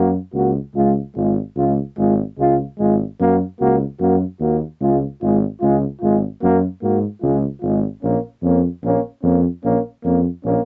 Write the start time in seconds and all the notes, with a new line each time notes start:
Already playing: F#2 A#3 F#4
0.34 C#2 A#3 F#4
0.75 C#2 G#3 F4
1.16 G#1 G#3 F4
1.56 C#2 G#3 F4
1.98 G#1 G#3 F4
2.38 C#2 G#3 F4
2.79 G#1 G#3 F4
3.20 F#2 A#3 F#4
3.61 C#2 A#3 F#4
4.00 F#2 A#3 F#4
4.40 D#2 A#3 F#4
4.81 C#2 G#3 F4
5.22 G#1 G#3 F4
5.60 C#2 G#3 F4
6.01 G#1 G#3 F4
6.42 F#2 A#3 F#4
6.82 G#2 A#3 F#4
7.22 C#2 G#3 F4
7.61 G#1 G#3 F4
8.03 A#1 A#3 C#4
8.42 F2 A#3 C#4
8.83 A#1 A#3 C#4
9.23 F2 A#3 C#4
9.64 A#1 A#3 C#4
10.04 F2 A#3 C#4
10.45 A#1 A#3 C#4